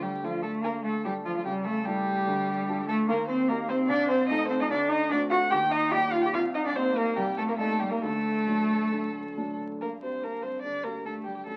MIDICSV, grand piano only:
0, 0, Header, 1, 2, 480
1, 0, Start_track
1, 0, Key_signature, -2, "minor"
1, 0, Tempo, 408163
1, 1702, Time_signature, 4, 2, 24, 8
1, 8434, Tempo, 441176
1, 11314, Tempo, 414079
1, 13342, End_track
2, 0, Start_track
2, 0, Title_t, "Grand piano"
2, 0, Program_c, 0, 0
2, 0, Note_on_c, 0, 38, 73
2, 0, Note_on_c, 0, 50, 65
2, 9, Control_c, 0, 64, 127
2, 268, Note_on_c, 0, 57, 55
2, 275, Note_on_c, 0, 62, 54
2, 278, Note_on_c, 0, 69, 56
2, 704, Note_off_c, 0, 57, 0
2, 708, Note_off_c, 0, 62, 0
2, 709, Note_off_c, 0, 69, 0
2, 720, Note_off_c, 0, 50, 0
2, 721, Note_off_c, 0, 38, 0
2, 755, Note_on_c, 0, 38, 65
2, 755, Note_on_c, 0, 50, 63
2, 1234, Note_on_c, 0, 57, 56
2, 1236, Note_on_c, 0, 62, 58
2, 1239, Note_on_c, 0, 69, 63
2, 1658, Note_off_c, 0, 57, 0
2, 1659, Note_off_c, 0, 62, 0
2, 1661, Note_off_c, 0, 69, 0
2, 1674, Note_off_c, 0, 38, 0
2, 1674, Note_off_c, 0, 50, 0
2, 1699, Note_on_c, 0, 49, 71
2, 1701, Note_on_c, 0, 37, 81
2, 1723, Control_c, 0, 64, 0
2, 1889, Control_c, 0, 64, 127
2, 2198, Note_on_c, 0, 57, 61
2, 2201, Note_on_c, 0, 64, 62
2, 2206, Note_on_c, 0, 69, 69
2, 2622, Note_off_c, 0, 57, 0
2, 2624, Note_off_c, 0, 64, 0
2, 2626, Note_off_c, 0, 69, 0
2, 2631, Note_off_c, 0, 49, 0
2, 2632, Note_off_c, 0, 37, 0
2, 2671, Note_on_c, 0, 50, 78
2, 2673, Note_on_c, 0, 38, 85
2, 2684, Control_c, 0, 64, 0
2, 2842, Control_c, 0, 64, 127
2, 3156, Note_on_c, 0, 62, 61
2, 3160, Note_on_c, 0, 65, 64
2, 3168, Note_on_c, 0, 69, 74
2, 3581, Note_off_c, 0, 62, 0
2, 3583, Note_off_c, 0, 65, 0
2, 3588, Note_off_c, 0, 69, 0
2, 3597, Note_off_c, 0, 50, 0
2, 3598, Note_off_c, 0, 38, 0
2, 3633, Note_on_c, 0, 39, 90
2, 3636, Note_on_c, 0, 51, 83
2, 3645, Control_c, 0, 64, 0
2, 3851, Control_c, 0, 64, 127
2, 4115, Note_on_c, 0, 58, 72
2, 4119, Note_on_c, 0, 63, 76
2, 4126, Note_on_c, 0, 67, 78
2, 4532, Note_off_c, 0, 58, 0
2, 4535, Note_off_c, 0, 63, 0
2, 4538, Note_off_c, 0, 67, 0
2, 4548, Note_off_c, 0, 39, 0
2, 4550, Note_off_c, 0, 51, 0
2, 4573, Note_on_c, 0, 36, 99
2, 4578, Note_on_c, 0, 48, 88
2, 4592, Control_c, 0, 64, 0
2, 4752, Control_c, 0, 64, 127
2, 5060, Note_on_c, 0, 57, 72
2, 5068, Note_on_c, 0, 63, 77
2, 5073, Note_on_c, 0, 69, 79
2, 5488, Note_off_c, 0, 57, 0
2, 5491, Note_off_c, 0, 63, 0
2, 5494, Note_off_c, 0, 69, 0
2, 5500, Note_off_c, 0, 36, 0
2, 5503, Note_off_c, 0, 48, 0
2, 5539, Note_on_c, 0, 38, 99
2, 5540, Note_on_c, 0, 50, 90
2, 5552, Control_c, 0, 64, 0
2, 5758, Control_c, 0, 64, 127
2, 6019, Note_on_c, 0, 57, 74
2, 6023, Note_on_c, 0, 60, 82
2, 6026, Note_on_c, 0, 66, 82
2, 6448, Note_off_c, 0, 57, 0
2, 6450, Note_off_c, 0, 60, 0
2, 6452, Note_off_c, 0, 66, 0
2, 6465, Note_off_c, 0, 38, 0
2, 6465, Note_off_c, 0, 50, 0
2, 6484, Note_on_c, 0, 39, 96
2, 6488, Note_on_c, 0, 51, 93
2, 6511, Control_c, 0, 64, 0
2, 6716, Control_c, 0, 64, 127
2, 6979, Note_on_c, 0, 55, 78
2, 6980, Note_on_c, 0, 58, 73
2, 6989, Note_on_c, 0, 67, 80
2, 7411, Note_off_c, 0, 55, 0
2, 7412, Note_off_c, 0, 58, 0
2, 7417, Note_off_c, 0, 67, 0
2, 7424, Note_off_c, 0, 39, 0
2, 7427, Note_off_c, 0, 51, 0
2, 7460, Note_on_c, 0, 48, 94
2, 7467, Note_on_c, 0, 36, 97
2, 7480, Control_c, 0, 64, 0
2, 7687, Control_c, 0, 64, 127
2, 7940, Note_on_c, 0, 55, 68
2, 7942, Note_on_c, 0, 58, 69
2, 7946, Note_on_c, 0, 63, 79
2, 8383, Note_off_c, 0, 55, 0
2, 8384, Note_off_c, 0, 58, 0
2, 8386, Note_off_c, 0, 63, 0
2, 8404, Note_off_c, 0, 48, 0
2, 8406, Note_off_c, 0, 36, 0
2, 8424, Note_on_c, 0, 36, 75
2, 8428, Note_on_c, 0, 48, 82
2, 8885, Note_on_c, 0, 55, 59
2, 8888, Note_on_c, 0, 58, 62
2, 8892, Note_on_c, 0, 63, 72
2, 9328, Note_off_c, 0, 55, 0
2, 9329, Note_off_c, 0, 58, 0
2, 9331, Note_off_c, 0, 63, 0
2, 9345, Note_off_c, 0, 36, 0
2, 9347, Note_off_c, 0, 48, 0
2, 9368, Note_on_c, 0, 50, 72
2, 9370, Note_on_c, 0, 38, 79
2, 9397, Control_c, 0, 64, 0
2, 9586, Control_c, 0, 64, 127
2, 9847, Note_on_c, 0, 54, 62
2, 9852, Note_on_c, 0, 57, 57
2, 9856, Note_on_c, 0, 62, 63
2, 10297, Note_off_c, 0, 54, 0
2, 10300, Note_off_c, 0, 57, 0
2, 10301, Note_off_c, 0, 62, 0
2, 10314, Note_off_c, 0, 50, 0
2, 10315, Note_off_c, 0, 38, 0
2, 10338, Note_on_c, 0, 38, 64
2, 10338, Note_on_c, 0, 50, 66
2, 10826, Note_on_c, 0, 54, 54
2, 10830, Note_on_c, 0, 62, 60
2, 10831, Note_on_c, 0, 57, 54
2, 11265, Note_off_c, 0, 54, 0
2, 11267, Note_off_c, 0, 62, 0
2, 11268, Note_off_c, 0, 57, 0
2, 11278, Note_off_c, 0, 38, 0
2, 11279, Note_off_c, 0, 50, 0
2, 11306, Note_on_c, 0, 43, 51
2, 11336, Control_c, 0, 64, 0
2, 11522, Control_c, 0, 64, 127
2, 11549, Note_on_c, 0, 67, 40
2, 11789, Note_on_c, 0, 62, 43
2, 11943, Note_off_c, 0, 67, 0
2, 12032, Note_on_c, 0, 55, 40
2, 12182, Note_off_c, 0, 62, 0
2, 12251, Note_off_c, 0, 43, 0
2, 12272, Note_on_c, 0, 50, 39
2, 12421, Note_off_c, 0, 55, 0
2, 12519, Note_on_c, 0, 67, 44
2, 12659, Note_off_c, 0, 50, 0
2, 12745, Note_on_c, 0, 62, 42
2, 12900, Note_off_c, 0, 67, 0
2, 12986, Note_on_c, 0, 55, 44
2, 13131, Note_off_c, 0, 62, 0
2, 13224, Note_on_c, 0, 42, 50
2, 13228, Note_off_c, 0, 55, 0
2, 13256, Control_c, 0, 64, 0
2, 13342, Note_off_c, 0, 42, 0
2, 13342, End_track
0, 0, End_of_file